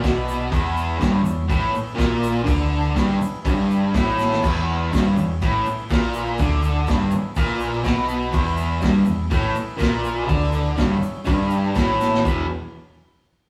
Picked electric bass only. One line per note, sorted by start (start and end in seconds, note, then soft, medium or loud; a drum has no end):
0.05 0.50 B1 medium
0.52 0.98 E1 loud
1.02 1.24 G1 loud
1.26 1.49 E1 medium
1.50 1.73 A1 loud
1.74 muted picked electric bass stroke soft
1.99 2.44 A#1 loud
2.47 2.93 D2 loud
3.20 muted picked electric bass stroke soft
3.45 3.91 G1 loud
3.95 4.40 A1 loud
4.44 4.89 E1 loud
4.94 5.16 G1 loud
5.17 5.40 E1 medium
5.42 5.65 A1 loud
5.66 muted picked electric bass stroke soft
5.90 6.36 A#1 loud
6.40 6.85 D2 loud
7.11 muted picked electric bass stroke soft
7.37 7.82 A#1 medium
7.86 8.31 B1 loud
8.35 8.80 E1 loud
8.83 9.06 G1 loud
9.08 9.31 E1 medium
9.31 9.55 A1 loud
9.56 muted picked electric bass stroke soft
9.81 10.27 A#1 loud
10.29 10.75 D2 loud
10.78 11.01 G1 loud
11.03 muted picked electric bass stroke soft
11.27 11.73 G1 medium
11.76 12.21 A1 loud
12.26 12.48 E1 loud